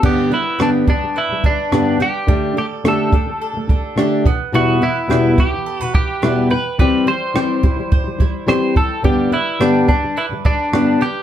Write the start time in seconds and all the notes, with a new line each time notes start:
0.02 G2 D3 G3 B3 D4 G4, kick, crash
0.30 G2 D3 G3 E4 B4
0.59 G2 D3 G3 B3 D4 G4 G5, cross-stick
0.87 G2 D3 G3 D4, kick
1.00 G2 D3 G3
1.16 E4 B4
1.29 G2 D3 G3
1.44 G2 D3 G3 D4, kick
1.72 G2 D3 G3 B3 D4 G4 B4, cross-stick
1.99 G2 D3 G3 G4 G5, cross-stick
2.27 D3 G3 A3 D4 G4, kick
2.55 D3 A3 G4 A4
2.84 D3 A3 D4 G4 A4 G5, cross-stick
3.12 D3 A3 D4, kick
3.26 D3 A3
3.42 A4
3.54 D3 A3
3.67 D3 A3 D4, kick
3.96 D3 A3 D4 G4 A4, cross-stick
4.24 E2 B2 E3 B3, kick
4.52 E2 B2 E3 G3 B3 E4 F#4
4.80 E2 B2 E3 E4 B4
5.08 E2 B2 E3 G3 B3 E4 G5, cross-stick
5.37 E2 B2 E4 G4, kick
5.51 E2 B2 E3
5.66 A4
5.80 E2 B2 E3 F#4 B4
5.94 E2 B2 E3 E4 G4, kick
6.22 E2 B2 E3 G3 B3 E4 B4, cross-stick
6.50 E2 B2 E3 B4 G5
6.79 E3 G3 C4 G4 B4, kick
7.06 E3 G3 C5
7.34 E3 G3 C4 G4 G5, cross-stick
7.62 E3 G3 E4, kick
7.77 E3 G3
7.92 C5, kick
8.04 E3 G3
8.19 E3 G3 E4, kick
8.47 E3 G3 C4 G4 C5, cross-stick
8.75 E3 G3 A4 G5, kick
9.03 G2 D3 G3 B3 D4 G4, kick
9.31 G2 D3 E4 B4
9.59 G2 D3 G3 B3 D4 G4 G5, cross-stick
9.87 G2 D3 G3 D4, kick
10.01 G2 D3 G3
10.17 E4 B4
10.30 G2 D3 G3
10.44 G2 D3 G3 D4, kick
10.72 G2 D3 G3 B3 D4 G4 B4, cross-stick
11.00 G2 D3 G3 G4 G5, cross-stick